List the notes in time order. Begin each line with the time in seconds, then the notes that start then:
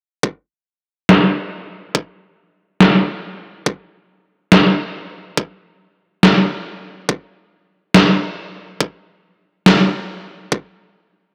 0.23 kick
1.09 snare
1.95 kick
2.80 snare
3.66 kick
4.52 snare
5.37 kick
6.23 snare
7.09 kick
7.94 snare
8.81 kick
9.66 snare
10.52 kick